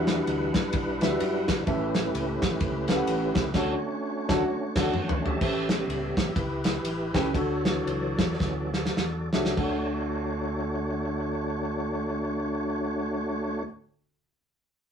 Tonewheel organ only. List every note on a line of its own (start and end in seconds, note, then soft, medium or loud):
0.00 1.63 G3 medium
0.00 1.63 D4 medium
0.00 1.63 E4 medium
0.00 1.63 B4 loud
0.00 1.63 F#5 medium
1.67 3.51 A3 medium
1.67 3.51 C#4 medium
1.67 3.51 E4 medium
1.67 3.51 G4 medium
1.67 1.74 A#4 medium
1.73 3.54 B4 medium
3.54 5.38 A3 medium
3.54 5.38 C#4 medium
3.54 5.38 D4 medium
3.54 5.38 F#4 medium
3.54 4.74 C#5 medium
4.77 4.94 A4 medium
4.77 4.94 D5 medium
4.96 5.23 C#5 medium
4.96 5.22 F#5 medium
5.24 6.32 G4 medium
5.24 6.32 C#5 medium
5.24 6.41 E5 loud
5.24 5.68 A5 medium
5.70 6.32 C#3 medium
5.70 6.33 G3 medium
5.70 6.33 B3 medium
6.35 7.30 E4 medium
6.35 7.30 G4 medium
6.35 7.37 B4 loud
7.34 7.64 F#4 medium
7.34 7.64 A4 medium
7.34 7.63 C#5 loud
7.64 8.36 E3 medium
7.64 8.36 F#3 medium
7.64 9.29 F#4 medium
7.64 9.29 A4 medium
7.64 8.36 C#5 medium
7.64 9.29 D5 loud
8.40 8.71 E3 soft
8.40 8.71 F#3 soft
8.40 8.71 C#4 medium
9.57 13.63 A3 loud
9.57 13.63 D4 medium
9.57 13.63 F#4 medium
9.57 13.63 C#5 loud